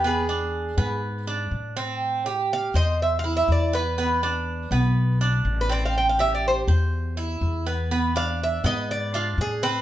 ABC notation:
X:1
M:4/4
L:1/16
Q:1/4=122
K:Am
V:1 name="Cuban tres"
^G8 z8 | z4 f2 ^d2 (3e2 f2 e2 =d2 B2- | B8 z4 z B d f | g f e d c2 z8 z2 |
z2 f2 e2 ^d2 =d2 F2 ^G2 B2 |]
V:2 name="Cuban tres"
B,2 D4 B,4 D4 C2- | C2 G4 c4 E4 B,2 | B,2 D4 B,4 D4 C2- | C2 G4 c4 E4 B,2 |
B,2 D4 B,4 D4 C2 |]
V:3 name="Upright bass" clef=bass
E,,6 ^G,,6 A,,4- | A,,6 E,,6 E,,4- | E,,6 B,,,6 A,,,4- | A,,,6 E,,6 E,,4- |
E,,6 ^G,,6 A,,4 |]